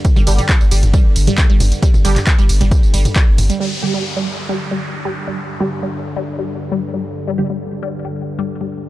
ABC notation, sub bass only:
X:1
M:4/4
L:1/16
Q:1/4=135
K:Cdor
V:1 name="Sub bass" clef=bass
z G,,, G,,, z2 G,,, G,,, G,,, z G,,, G,,, z2 G,,, G,,, z | z G,,, G,,, z2 G,,, G,,, G,,, z G,,, G,,, z2 G,,, G,,, z | z16 | z16 |
z16 |]